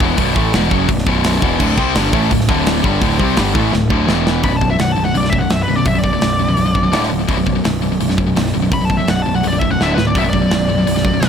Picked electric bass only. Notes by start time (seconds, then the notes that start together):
0.00 E1
0.18 B0
0.36 A1
0.54 E1
0.71 F#1
0.89 B0
1.07 B0
1.42 E1
1.60 D1
1.78 C2
1.96 G1
2.13 A1
2.31 D1
2.49 D1
2.84 G1
3.02 D1
3.20 C2
3.38 G1
3.55 A1
3.73 D1
3.91 D1
4.08 E1
4.44 B0
4.79 B0
4.97 B0
5.15 B0
5.51 B0
5.68 B0
5.86 B0
6.22 B0
6.39 B0
6.57 B0
6.94 D1
7.12 D1
7.29 B0
7.65 B0
7.83 B0
8.00 B0
8.36 B0
8.55 B0
8.72 B0
9.08 B0
9.26 B0
9.44 B0
9.80 D1
9.97 D1
10.15 B0
10.50 B0
10.68 B0
10.86 B0
11.21 B0